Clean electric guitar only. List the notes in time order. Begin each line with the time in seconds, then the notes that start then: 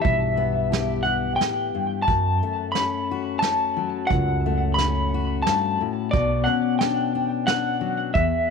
0.02 E5
1.03 F#5
1.36 G5
2.02 A5
2.72 B5
3.39 A5
4.07 F#5
4.74 B5
5.42 A5
6.11 D5
6.44 F#5
6.79 G5
7.47 F#5
8.14 E5